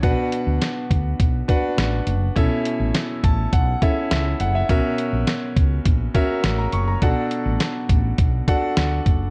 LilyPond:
<<
  \new Staff \with { instrumentName = "Grand piano" } { \time 4/4 \key b \minor \tempo 4 = 103 << { r1 | r4. a''8 fis''4 e''8 fis''16 e''16~ | e''16 r2. ais''16 cis'''16 ais''16~ | ais''16 r2. r8. | } \\ { <b, d' fis' b' fis''>4. r4 <d' fis' b' fis''>4 r8 | <b, cis' e' a' e''>4. r4 <cis' e' a' e''>4 r8 | <b, cis' fis' ais' e''>4. r4 <cis' fis' ais' e''>4 r8 | <b, d' fis' a' fis''>4. r4 <d' fis' a' fis''>4 r8 | } >> }
  \new Staff \with { instrumentName = "Fretless electric bass" } { \clef bass \time 4/4 \key b \minor b,,16 r8 d,16 r8 d,8 b,,8 r8 a,,8 fis,,8 | b,,16 r8 a,,16 r8 a,,8 b,,8 r8 cis,8 fis,,8 | b,,16 r8 ais,,16 r8 cis,8 ais,,8 r8 a,,8 fis,,8 | b,,16 r8 a,,16 r8 a,,8 b,,8 r8 d,8 fis,,8 | }
  \new DrumStaff \with { instrumentName = "Drums" } \drummode { \time 4/4 <hh bd>8 hh8 <hh sn>8 <hh bd>8 <hh bd>8 <hh bd>8 <hh sn>8 hh8 | <hh bd>8 hh8 <hh sn>8 <hh bd>8 <hh bd>8 <hh bd>8 <hh sn>8 hh8 | <hh bd>8 hh8 <hh sn>8 <hh bd>8 <hh bd>8 <hh bd>8 <hh sn>8 hh8 | <hh bd>8 hh8 <hh sn>8 <hh bd>8 <hh bd>8 <hh bd>8 <hh sn>8 <hh bd>8 | }
>>